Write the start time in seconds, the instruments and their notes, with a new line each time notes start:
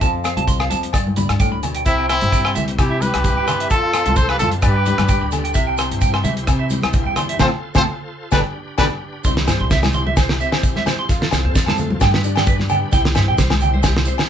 0.01 nylon-string guitar F2 F3 C4 F4, upright bass F2, clean electric guitar A5, muted nylon-string guitar stroke, kick, closed hi-hat, maracas
0.24 nylon-string guitar C4, clean electric guitar F5, cross-stick, closed hi-hat, low agogo, maracas
0.37 upright bass C2, clean electric guitar A5, closed hi-hat, high conga
0.48 clean electric guitar C6, kick, closed hi-hat, maracas
0.60 clean electric guitar F5, cross-stick, low agogo
0.70 upright bass F2, nylon-string guitar F3, clean electric guitar A5, closed hi-hat, high conga, maracas
0.83 closed hi-hat
0.93 nylon-string guitar G2, upright bass G2, clean electric guitar D5, kick, cross-stick, closed hi-hat, low agogo, maracas
1.07 high conga
1.16 nylon-string guitar D4, clean electric guitar B5, closed hi-hat, high conga, low conga, maracas
1.29 upright bass G2, cross-stick, closed hi-hat, high conga, low agogo
1.40 nylon-string guitar A2, clean electric guitar G5, kick, closed hi-hat, maracas
1.52 upright bass D2, clean electric guitar B5
1.63 nylon-string guitar B2, closed hi-hat, low conga, low agogo, maracas
1.75 clean electric guitar G5, closed hi-hat
1.85 upright bass C2, nylon-string guitar C3, tonewheel organ C4 E4 G4, accordion C4, trumpet E4, clean electric guitar E5, kick, closed hi-hat, maracas
1.98 clean electric guitar G5
2.09 nylon-string guitar C4, accordion C4, trumpet E4, clean electric guitar C6, cross-stick, closed hi-hat, low agogo, maracas
2.21 upright bass G2, closed hi-hat, high conga
2.32 clean electric guitar G5, kick, closed hi-hat, maracas
2.45 clean electric guitar C6, cross-stick, low agogo
2.55 upright bass C2, nylon-string guitar E3, clean electric guitar E5, closed hi-hat, high conga, low conga, maracas
2.68 closed hi-hat
2.79 upright bass C3, nylon-string guitar E4, accordion E4, trumpet G4, kick, cross-stick, closed hi-hat, low agogo, maracas
2.90 clean electric guitar E5
3.01 accordion G4, trumpet B4, closed hi-hat, high conga, maracas
3.14 upright bass C2, cross-stick, closed hi-hat, high conga, low agogo
3.24 nylon-string guitar G2, kick, closed hi-hat, maracas
3.37 upright bass G2, clean electric guitar G5
3.47 nylon-string guitar G3, clean electric guitar C6, cross-stick, closed hi-hat, low conga, low agogo, maracas
3.60 clean electric guitar E5, closed hi-hat
3.69 upright bass F2, nylon-string guitar F2, tonewheel organ F4 A4 C5, accordion F4, trumpet A4, clean electric guitar A5, kick, closed hi-hat, maracas
3.94 nylon-string guitar C4, clean electric guitar F5, cross-stick, closed hi-hat, low agogo, maracas
4.06 upright bass C2, clean electric guitar A5, closed hi-hat, high conga
4.16 nylon-string guitar E2, accordion A4, trumpet C5, clean electric guitar C6, kick, closed hi-hat, maracas
4.29 accordion G4, trumpet B4, clean electric guitar F5, cross-stick, low agogo
4.39 nylon-string guitar F2, upright bass F#2, accordion F4, trumpet A4, clean electric guitar A5, closed hi-hat, high conga, low conga, maracas
4.51 closed hi-hat
4.62 nylon-string guitar G2, upright bass G2, tonewheel organ D4 G4 B4, trumpet B4, clean electric guitar D5, kick, cross-stick, closed hi-hat, low agogo, maracas
4.67 accordion G4
4.76 clean electric guitar G5
4.86 nylon-string guitar D4, clean electric guitar B5, closed hi-hat, high conga, maracas
4.98 upright bass G2, cross-stick, closed hi-hat, high conga, low agogo
5.08 clean electric guitar G5, kick, closed hi-hat, maracas
5.21 upright bass D2, clean electric guitar B5
5.31 nylon-string guitar D3, closed hi-hat, low conga, low agogo, maracas
5.44 clean electric guitar G5, closed hi-hat
5.54 upright bass C2, nylon-string guitar C3, tonewheel organ E4 C5, clean electric guitar E5, kick, closed hi-hat, maracas
5.67 clean electric guitar G5
5.77 nylon-string guitar C4, clean electric guitar C6, cross-stick, closed hi-hat, low agogo, maracas
5.91 upright bass G2, closed hi-hat
6.01 clean electric guitar G5, kick, closed hi-hat, maracas
6.14 clean electric guitar C6, cross-stick, low agogo
6.24 upright bass C2, nylon-string guitar E3, clean electric guitar E5, closed hi-hat, high conga, low conga, maracas
6.37 closed hi-hat
6.47 upright bass C3, nylon-string guitar E4, kick, cross-stick, closed hi-hat, low agogo, maracas
6.59 clean electric guitar E5
6.70 nylon-string guitar C4, closed hi-hat, high conga, maracas
6.83 upright bass C2, cross-stick, closed hi-hat, high conga, low agogo
6.93 nylon-string guitar G2, kick, closed hi-hat, maracas
7.06 upright bass E2, clean electric guitar G5
7.16 nylon-string guitar G3, clean electric guitar C6, cross-stick, closed hi-hat, low conga, low agogo, maracas
7.29 clean electric guitar E5, closed hi-hat
7.39 upright bass F2, nylon-string guitar A2 C3 F3, accordion C4 F4 A4, tonewheel organ F4 A4, clean electric guitar C5 F5 A5, trumpet C5, kick, snare, low conga, low agogo, maracas
7.75 upright bass F2, nylon-string guitar A2 C3 F3, accordion C4 F4 A4, clean electric guitar C5 F5 A5, trumpet C5, kick, snare, low conga, low agogo, maracas
8.31 upright bass G1, nylon-string guitar B2 D3 G3, tonewheel organ D4 G4 B4, accordion D4 G4 B4, trumpet B4, clean electric guitar D5 G5 B5, kick, snare, low conga, low agogo, maracas
8.78 upright bass G1, nylon-string guitar B2 D3 G3, accordion D4 G4 B4, trumpet B4, clean electric guitar D5 G5 B5, kick, snare, low conga, low agogo, maracas
9.24 upright bass C2, nylon-string guitar C3 E3 G3 C4 E4, tonewheel organ E4 G4 C5, clean electric guitar C6, kick, maracas
9.37 snare
9.47 upright bass G2, nylon-string guitar C4, clean electric guitar C5, snare, low agogo, maracas
9.60 upright bass C2, clean electric guitar C6
9.70 nylon-string guitar E3, clean electric guitar E5, kick, snare, maracas
9.83 snare, high conga, low agogo
9.93 clean electric guitar C6, muted nylon-string guitar stroke, low conga, maracas
10.06 clean electric guitar E5, high conga
10.17 nylon-string guitar G2, clean electric guitar C5, kick, snare, low agogo, maracas
10.29 snare
10.41 nylon-string guitar C4, clean electric guitar E5, maracas
10.52 clean electric guitar C5, snare, low agogo
10.63 nylon-string guitar E3, kick, maracas
10.76 clean electric guitar E5, snare, high conga
10.86 clean electric guitar C5, snare, low conga, low agogo, maracas
10.99 clean electric guitar C6
11.08 nylon-string guitar F2 F4, upright bass F2, tonewheel organ F4 A4, kick, snare, maracas
11.22 clean electric guitar A4, snare
11.31 upright bass C2, nylon-string guitar C4, snare, low agogo, maracas
11.45 upright bass F2, clean electric guitar C5
11.54 nylon-string guitar F3, clean electric guitar A4, kick, snare, maracas
11.66 clean electric guitar A5, snare, high conga, low agogo
11.78 nylon-string guitar A3, low conga, maracas
11.91 high conga
11.99 nylon-string guitar G2 G4, upright bass G2, tonewheel organ D4 G4 B4, clean electric guitar G5, kick, snare, low agogo, maracas
12.14 clean electric guitar B4, snare
12.24 nylon-string guitar D4, maracas
12.36 clean electric guitar G5, snare, low agogo
12.46 nylon-string guitar D3, clean electric guitar B4, kick, maracas
12.59 snare, high conga
12.69 nylon-string guitar B3, clean electric guitar G5, low conga, low agogo, maracas
12.91 upright bass C2, nylon-string guitar C3 E4, tonewheel organ E4 C5, clean electric guitar G5, kick, snare, maracas
13.05 snare
13.15 upright bass G2, nylon-string guitar C4, clean electric guitar G4, snare, low agogo, maracas
13.28 upright bass C2, clean electric guitar G5
13.38 nylon-string guitar E3, clean electric guitar C5, kick, snare, maracas
13.50 snare, high conga, low agogo
13.60 nylon-string guitar G3, clean electric guitar G5, low conga, maracas
13.74 clean electric guitar C5, high conga
13.83 nylon-string guitar G2, clean electric guitar G4, kick, snare, low agogo, maracas
13.97 snare
14.05 nylon-string guitar C4, clean electric guitar C5, maracas
14.18 clean electric guitar G4, snare, low agogo